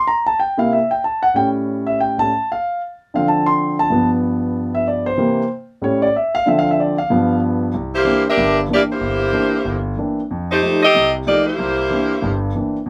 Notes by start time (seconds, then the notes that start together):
0.07 A#5
0.27 A5
0.40 G5
0.58 C3 A#3 E4 F5
0.73 E5
0.91 G5
1.04 A5
1.23 F#5
1.34 A2 G3 C#4 G5
1.87 E5
2.00 G5
2.18 A2 G3 C#4 A5
2.52 F5
3.14 D3 F3 C4 F5
3.28 A5
3.46 C6
3.79 A5
3.90 G2 F3 B3
4.75 E5
4.88 D5
5.06 C5
5.18 C3 E3 A#3
5.82 A2 G3 C#4 C#5
6.02 D5
6.16 E5
6.35 F5
6.46 D3 F3 C4 E5
6.59 F5
6.71 E5
6.80 D5
6.98 F5
7.10 G2 F3 B3
7.74 C2
7.95 A#3 E4 G4 C5
8.05 E3 A#3 C4 D4
8.29 D4 G4 A#4 E5
8.37 G1 G2
8.69 E3 A#3 C4 D4
8.73 A#3 E4 G4 D5
8.91 A#3 E4 G4 C5
9.00 G1
9.33 E3 A#3 C4 D4
9.65 G1
9.97 E3 A#3 C4 D4
10.31 F2
10.51 A3 D#4 G4 C5
10.62 F3 G3 A3 D#4
10.83 C4 G4 A4 D#5
10.94 C2 C3
11.26 F3 G3 A3 A#3 D#4 G4 D5
11.46 A#3 E4 G4 C5
11.59 C2
11.90 E3 A#3 C4 D4
12.22 G1 G2
12.55 E3 A#3 C4 D4
12.86 F2